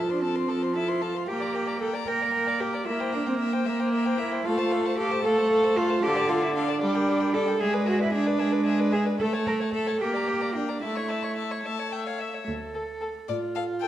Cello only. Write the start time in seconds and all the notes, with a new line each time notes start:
0.10 D4
0.22 C4
0.76 E4
1.02 F4
1.28 G4
1.81 A4
2.07 A#4
2.60 G4
2.87 E4
3.14 D4
3.28 C4
3.40 A#3
4.19 E4
4.45 F4
4.98 G4
5.24 A4
5.76 F4
6.03 G4
6.29 F4
6.43 E4
6.55 D4
7.34 A4
7.61 G#4
7.87 F#4
8.02 E4
8.15 D4
8.93 G#4
9.20 A4
9.47 A#4
9.74 A4
10.01 G4
10.55 D4
10.82 E4
12.48 D2
13.29 A2